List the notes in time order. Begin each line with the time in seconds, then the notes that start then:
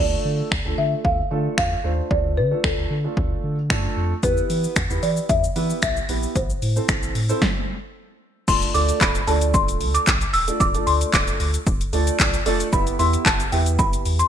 0.00 D2 A3 D4 F4 A4 D5
0.25 D3
0.52 D2, finger snap, kick
0.65 D2 A3 D4 F4 A4
0.78 D3 E5
1.05 D2 F5, kick
1.31 D3 A3 D4 F4 A4
1.58 E2 F5, finger snap, kick
1.84 D#2 A3 D4 F4 C5
2.11 D2 D5, kick
2.37 D3 B4
2.51 A3 D4 F4 A4
2.64 D2 A4, finger snap, kick
2.78 D2
2.90 D3
3.04 A3 D4 F4 A4
3.17 D2, kick
3.44 D3
3.70 F#2 A3 D4 F4 A4, finger snap, kick
3.97 F2
4.23 E2 B3 E4 G4 B4, kick, closed hi-hat, shaker
4.37 shaker
4.50 E3, open hi-hat, shaker
4.64 shaker
4.76 E2, finger snap, kick, closed hi-hat, shaker
4.90 E2 B3 E4 G4 B4, shaker
5.03 E3 D5, open hi-hat, shaker
5.17 shaker
5.29 E2 E5, kick, closed hi-hat, shaker
5.44 shaker
5.56 E3 B3 E4 G4 B4, open hi-hat, shaker
5.70 shaker
5.82 B1 E5, finger snap, kick, closed hi-hat, shaker
5.97 shaker
6.09 A#1 B3 E4 G4 B4, open hi-hat, shaker
6.23 shaker
6.36 A1 C5, kick, closed hi-hat, shaker
6.50 shaker
6.62 A2, open hi-hat, shaker
6.76 C4 E4 A4 C5, shaker
6.88 A1, finger snap, kick, closed hi-hat, shaker
7.03 A1, shaker
7.15 A2, open hi-hat, shaker
7.29 C4 E4 A4 C5, shaker
7.42 kick, snare
8.48 D1 A3 D4 F4 A4 D5 C6, kick, crash, shaker
8.62 closed hi-hat, shaker
8.74 D2 A3 D4 F4 A4 D5 D6, open hi-hat, shaker
8.89 closed hi-hat, shaker
9.01 D1 B5, kick, clap, shaker
9.15 closed hi-hat, shaker
9.21 B5
9.27 D2 A3 D4 F4 A4 D5 A5, open hi-hat, shaker
9.41 closed hi-hat, shaker
9.54 D1 C6, kick, shaker
9.68 closed hi-hat, shaker
9.81 D2, open hi-hat, shaker
9.94 D6, closed hi-hat, shaker
10.07 B1, kick, clap, shaker
10.21 closed hi-hat, shaker
10.33 D#1 E6, open hi-hat, shaker
10.48 A3 D4 F4 A4 D5, closed hi-hat, shaker
10.60 D1 D6, kick, shaker
10.74 A3 D4 F4 A4 D5, closed hi-hat, shaker
10.87 D2 C6, open hi-hat, shaker
11.01 closed hi-hat, shaker
11.13 D1 D6, kick, clap, shaker
11.28 closed hi-hat, shaker
11.40 D2, open hi-hat, shaker
11.54 closed hi-hat, shaker
11.66 D1, kick, shaker
11.81 closed hi-hat, shaker
11.93 D2 A3 D4 F4 A4 D5, open hi-hat, shaker
12.07 closed hi-hat, shaker
12.19 B1, kick, clap, shaker
12.34 closed hi-hat, shaker
12.46 F1 A3 D4 F4 A4 D5, open hi-hat, shaker
12.60 closed hi-hat, shaker
12.73 E1 B3 E4 G4 B4 E5 B5, kick, shaker
12.87 closed hi-hat, shaker
12.99 E2 B3 E4 G4 B4 E5 C6, open hi-hat, shaker
13.13 closed hi-hat, shaker
13.26 E1 A5, kick, clap, shaker
13.40 closed hi-hat, shaker
13.52 E2 B3 E4 G4 B4 E5 G5, open hi-hat, shaker
13.66 closed hi-hat, shaker
13.79 E1 B5, kick, shaker
13.93 closed hi-hat, shaker
14.05 E2, open hi-hat, shaker
14.19 C6, closed hi-hat, shaker